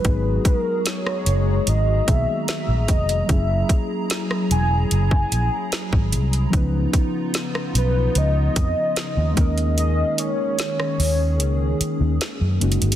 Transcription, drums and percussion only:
0.05 kick, closed hi-hat
0.45 kick, closed hi-hat
0.86 snare, closed hi-hat
1.06 cross-stick
1.26 closed hi-hat
1.67 closed hi-hat
2.08 kick, closed hi-hat
2.48 snare, closed hi-hat
2.88 kick, closed hi-hat, open hi-hat
3.09 closed hi-hat
3.29 kick, closed hi-hat
3.69 kick, closed hi-hat
4.10 snare, closed hi-hat
4.31 cross-stick
4.51 closed hi-hat
4.91 closed hi-hat
5.11 kick
5.32 closed hi-hat
5.72 snare, closed hi-hat
5.93 kick
6.12 closed hi-hat, open hi-hat
6.33 closed hi-hat
6.53 kick, closed hi-hat
6.93 kick, closed hi-hat
7.34 snare, closed hi-hat
7.55 cross-stick
7.75 closed hi-hat
8.15 closed hi-hat
8.56 kick, closed hi-hat
8.96 snare, closed hi-hat
9.37 kick, closed hi-hat, open hi-hat
9.58 closed hi-hat
9.78 closed hi-hat
10.18 closed hi-hat
10.59 snare, closed hi-hat
10.80 cross-stick
11.00 open hi-hat
11.40 closed hi-hat
11.81 closed hi-hat
12.21 snare, closed hi-hat
12.61 closed hi-hat, open hi-hat
12.72 closed hi-hat
12.82 closed hi-hat
12.92 closed hi-hat

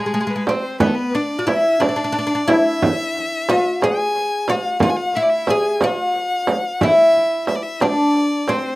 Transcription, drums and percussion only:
0.47 frame drum
0.80 frame drum
1.48 frame drum
1.82 frame drum
2.49 frame drum
2.82 frame drum
3.49 frame drum
3.82 frame drum
4.48 frame drum
4.80 riq, frame drum
4.99 riq
5.47 riq, frame drum
5.81 riq, frame drum
6.47 riq, frame drum
6.81 riq, frame drum
6.99 riq
7.47 riq, frame drum
7.80 riq, frame drum
8.48 riq, frame drum

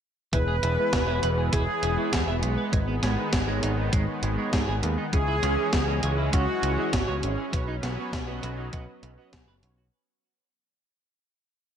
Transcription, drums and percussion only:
0.33 kick, closed hi-hat
0.63 closed hi-hat
0.93 kick, snare, closed hi-hat
1.23 closed hi-hat
1.53 kick, closed hi-hat
1.83 closed hi-hat
2.13 kick, snare, closed hi-hat
2.43 closed hi-hat
2.73 kick, closed hi-hat
3.03 snare, closed hi-hat
3.33 kick, snare, closed hi-hat
3.63 closed hi-hat
3.93 kick, closed hi-hat
4.23 closed hi-hat
4.53 kick, snare, closed hi-hat
4.83 closed hi-hat
5.13 kick, closed hi-hat
5.43 closed hi-hat
5.73 kick, snare, closed hi-hat
6.03 closed hi-hat
6.33 kick, closed hi-hat
6.63 closed hi-hat
6.93 kick, snare, closed hi-hat
7.23 closed hi-hat
7.53 kick, closed hi-hat
7.83 snare, closed hi-hat
8.13 kick, snare, closed hi-hat
8.43 closed hi-hat
8.73 kick, closed hi-hat
9.03 closed hi-hat
9.33 kick, snare, closed hi-hat
9.63 closed hi-hat

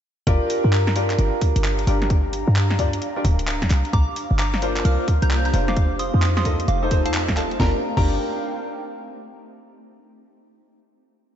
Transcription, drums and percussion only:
0.27 kick, closed hi-hat
0.50 open hi-hat
0.73 clap
0.87 snare, closed hi-hat
0.96 open hi-hat
1.10 clap, closed hi-hat
1.19 closed hi-hat
1.41 kick, open hi-hat
1.56 closed hi-hat
1.64 clap
1.79 closed hi-hat
1.87 open hi-hat
2.02 snare, closed hi-hat
2.10 kick, closed hi-hat
2.33 open hi-hat
2.56 clap
2.71 snare, closed hi-hat
2.79 kick, open hi-hat
2.93 closed hi-hat
3.02 closed hi-hat
3.25 kick, open hi-hat
3.39 closed hi-hat
3.48 clap
3.62 kick, snare, closed hi-hat
3.71 clap, open hi-hat
3.85 closed hi-hat
3.93 kick, closed hi-hat
4.16 open hi-hat
4.39 clap
4.54 snare, closed hi-hat
4.62 open hi-hat
4.77 clap, closed hi-hat
4.85 closed hi-hat
5.08 kick, open hi-hat
5.22 closed hi-hat
5.31 clap
5.45 closed hi-hat
5.54 open hi-hat
5.68 snare, closed hi-hat
5.76 kick, closed hi-hat
5.99 open hi-hat
6.22 clap
6.37 snare, closed hi-hat
6.45 kick, open hi-hat
6.60 closed hi-hat
6.68 closed hi-hat
6.91 kick, open hi-hat
7.06 closed hi-hat
7.14 clap
7.28 kick, snare, closed hi-hat
7.37 clap, open hi-hat
7.51 closed hi-hat
7.60 kick, snare
7.97 kick, crash

